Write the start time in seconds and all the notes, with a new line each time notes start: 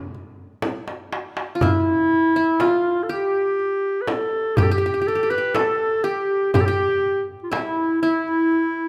0.14 darbuka ka
0.62 darbuka tek, frame drum
0.88 darbuka ka
1.13 darbuka tek
1.37 darbuka ka
1.55 F4
1.61 E4, frame drum, darbuka dum
2.11 darbuka ka
2.36 E4
2.60 F4, darbuka tek, frame drum
3.03 A4
3.09 G4, darbuka ka
3.34 darbuka ka
3.59 darbuka ka
4.01 B4
4.08 A4, darbuka tek, frame drum
4.56 G4, frame drum, darbuka dum
4.63 A4
4.71 G4
4.78 G4
4.86 G4
4.94 G4
5.01 G4
5.07 G4 A4
5.15 G4
5.23 G4
5.30 G4 B4
5.38 G4
5.55 A4, darbuka tek, frame drum
6.04 G4, darbuka ka
6.53 G4, frame drum, darbuka dum
6.60 A4
6.65 G4
7.43 F4
7.51 E4, darbuka tek, frame drum
8.01 E4, darbuka ka
8.28 darbuka ka
8.52 darbuka ka